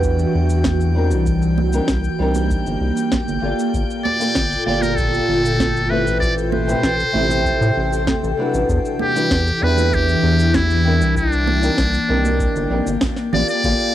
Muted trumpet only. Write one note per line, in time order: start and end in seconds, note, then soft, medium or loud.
4.06 4.63 D5 loud
4.66 4.84 D5 medium
4.82 4.98 A#4 medium
4.97 5.92 A4 medium
5.90 6.20 B4 medium
6.20 6.35 D5 loud
6.50 8.33 C5 loud
9.03 9.65 G4 loud
9.63 9.96 B4 loud
9.94 10.57 G4 loud
10.56 11.17 E4 loud
11.18 12.99 D4 loud
13.34 13.48 D5 loud
13.50 13.95 D5 loud